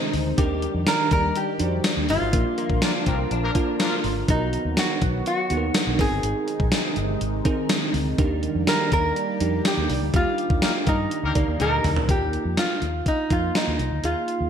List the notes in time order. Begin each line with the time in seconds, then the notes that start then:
Already playing: C3 D#3 G#3 C4 D#4 G#4 A#4 C5
0.14 D2, open hi-hat
0.37 D#2 D#3 G3 D4 D#4 G4 A#4 D5, kick, closed hi-hat
0.62 closed hi-hat
0.74 F2
0.87 A#4, snare, closed hi-hat, tambourine
1.11 D#2 A#4, kick, closed hi-hat
1.35 G4, closed hi-hat
1.59 F2 D4 D#4 F#4 C5, closed hi-hat
1.65 G4
1.84 snare, closed hi-hat, tambourine
1.97 D#2
2.09 G1 F4, open hi-hat
2.21 G#1
2.32 A#1 D3 F3 A#3 D4 F4 A#4, kick, closed hi-hat
2.58 A#3, closed hi-hat
2.70 A#1, kick
2.82 F3 A#3 D4 A#4, snare, closed hi-hat, tambourine
3.06 C2 F3 A#3 C4 D4 A#4, kick, closed hi-hat
3.31 A#1 D4, closed hi-hat
3.43 F3 A#3 D4 A#4
3.55 A#3 D4 F4 A#4, kick, closed hi-hat
3.79 F3 A#3 D4 F4 A#4, snare, closed hi-hat, tambourine
4.04 G#1, open hi-hat
4.28 B1 D#3 F#3 B3 D#4 F#4 A#4, kick, closed hi-hat
4.53 closed hi-hat
4.65 D#2
4.77 F#4, snare, closed hi-hat, tambourine
5.02 B1, kick, closed hi-hat
5.26 F#4, closed hi-hat
5.50 D#2 B3 D#4 F#4 G#4, closed hi-hat
5.57 A#4
5.74 snare, closed hi-hat, tambourine
5.87 B1
5.99 G#1 C3 G#3 C4 D#4 G#4 A#4, kick, open hi-hat
6.11 G1
6.23 G#1, closed hi-hat
6.48 closed hi-hat
6.60 A#1, kick
6.72 snare, closed hi-hat, tambourine
6.96 G1, closed hi-hat
7.21 G#1, closed hi-hat
7.45 C4 D#4 G#4 A#4, kick, closed hi-hat
7.69 snare, closed hi-hat, tambourine
7.94 D2, open hi-hat
8.18 D#2 G3 A#3 D4 D#4 G4 A#4 D5, kick, closed hi-hat
8.43 closed hi-hat
8.55 F2
8.67 A#4, snare, closed hi-hat, tambourine
8.92 D#2 A#4, kick, closed hi-hat
9.16 closed hi-hat
9.40 F2 D4 D#4 G4 A#4, closed hi-hat
9.65 G4, snare, closed hi-hat, tambourine
9.77 D#2
9.90 C2, open hi-hat
10.02 D2
10.13 D#2 D#3 D4 D#4 F4 G4 A#4, kick, closed hi-hat
10.38 closed hi-hat
10.50 D#2, kick
10.62 G3 A#3 D#4 A#4, snare, closed hi-hat, tambourine
10.87 G2 G3 A#3 D#4 A#4, kick, closed hi-hat
11.11 closed hi-hat
11.23 D2 G3 A#3 D#4 A#4
11.35 D2 A#3 D#4 G4 A#4 D5, kick, closed hi-hat
11.48 D#2
11.60 D2 G3 A#3 D#4 A#4, closed hi-hat, high tom
11.84 D2, mid tom, open hi-hat
11.96 floor tom
12.08 D#2 A#3 D#4 F4 G4 A#4, kick, closed hi-hat
12.33 closed hi-hat
12.45 F2
12.57 F4, snare, closed hi-hat
12.82 D#2, closed hi-hat
13.06 D#4, kick, closed hi-hat
13.30 F2 A#3 D#4 F4 A#4, kick, closed hi-hat
13.55 D#4, snare, closed hi-hat
13.67 D#2
13.79 C2, closed hi-hat
13.91 D2
14.03 D#2 A#3 D#4 F4 G#4, closed hi-hat
14.28 closed hi-hat
14.41 D#2